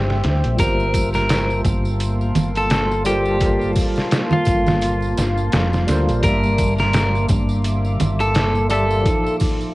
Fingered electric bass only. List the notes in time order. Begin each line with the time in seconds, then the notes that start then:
Already playing: G1
0.24 D2
0.45 A#1
0.59 G1
1.65 G1
2.36 G1
4.47 G1
5.18 G1
5.53 F1
5.88 D2
6.09 A#1
6.24 G1
7.30 G1
8.00 G1